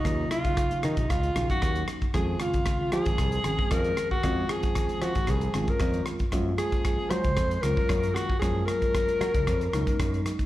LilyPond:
<<
  \new Staff \with { instrumentName = "Alto saxophone" } { \time 4/4 \key des \major \tempo 4 = 115 ees'8 f'4 ees'8 f'8. ges'8. r8 | aes'8 f'4 aes'4. bes'8. ges'16~ | ges'8 aes'4 ges'8 aes'8. bes'8. r8 | r8 aes'4 c''4 bes'4 ges'8 |
aes'8 bes'2. r8 | }
  \new Staff \with { instrumentName = "Tine electric piano" } { \time 4/4 \key des \major <ges bes des' ees' f'>4.~ <ges bes des' ees' f'>16 r8. <ges bes des' ees' ges'>4. | <ees aes c' des' f'>4.~ <ees aes c' des' f'>16 r8. <ees aes c' des' aes'>4. | <ees aes c' des' f'>4.~ <ees aes c' des' f'>16 r8. <ees aes c' des' f'>4. | <f aes bes des' f'>4.~ <f aes bes des' f'>16 r8. <ges aes bes des' f'>4. |
<ges aes bes des' f'>4.~ <ges aes bes des' f'>16 r8. <ges aes bes des' ees'>4. | }
  \new Staff \with { instrumentName = "Bass clarinet" } { \clef bass \time 4/4 \key des \major c8 des4 c8 des8. ees8. r8 | f8 des4 f4. f8. ees16~ | ees8 f4 ees8 f8. ges8. r8 | r8 f4 aes4 ges4 ees8 |
f8 ges2. r8 | }
  \new Staff \with { instrumentName = "Fingered electric bass" } { \clef bass \time 4/4 \key des \major ees,8 r4 ees16 bes,,16 des,8 bes,,16 r16 ees,8 r8 | f,8 r4 f16 aes,,16 c,8 aes,,16 r16 f,8 r8 | f,8 r4 f16 aes,,16 c,8 aes,,16 r16 f,8 r8 | ges,8 r4 ges16 des,16 f,8 des,16 r16 ges,8 r8 |
ges,8 r4 ges16 des,16 f,8 des,16 r16 ges,8 r8 | }
  \new DrumStaff \with { instrumentName = "Drums" } \drummode { \time 4/4 <hh bd ss>8 <hh ss>16 <hh bd>16 <hh bd ss>16 hh16 <hh ss>16 <hh bd>16 <hh bd ss>16 hh16 <hh ss>16 <hh bd>16 <hh bd ss>16 hh16 <hh ss>16 <hh bd>16 | <hh bd ss>8 <hh ss>16 <hh bd>16 <hh bd ss>8 <hh ss>16 <hh bd>16 <hh bd ss>16 hh16 <hh ss>16 bd16 <hh bd ss>16 hh16 <hh ss>16 bd16 | <hh bd ss>8 <hh ss>16 <hh bd>16 <hh bd ss>16 hh16 <hh ss>16 <hh bd>16 <hh bd ss>16 hh16 <hh ss>16 <hh bd>16 <hh bd ss>16 hh16 <hh ss>16 <hh bd>16 | <hh bd ss>8 <hh ss>16 <hh bd>16 <hh bd ss>8 <hh ss>16 <hh bd>16 <hh bd ss>16 hh16 <hh ss>16 bd16 <hh bd ss>16 hh16 <hh ss>16 bd16 |
<hh bd ss>8 <hh ss>16 <hh bd>16 <hh bd ss>16 hh16 <hh ss>16 <hh bd>16 <hh bd ss>16 hh16 <hh ss>16 <hh bd>16 <hh bd ss>16 hh16 <hh ss>16 <hh bd>16 | }
>>